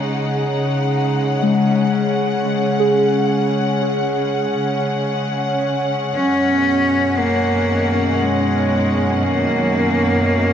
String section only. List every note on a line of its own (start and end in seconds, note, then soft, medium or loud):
0.00 6.16 C#3 medium
0.00 6.15 G#3 medium
0.00 1.88 D#4 medium
0.00 10.53 F#5 medium
1.56 10.53 C#4 medium
6.17 10.53 F#2 medium
6.40 10.53 B2 medium
7.60 10.53 D#3 medium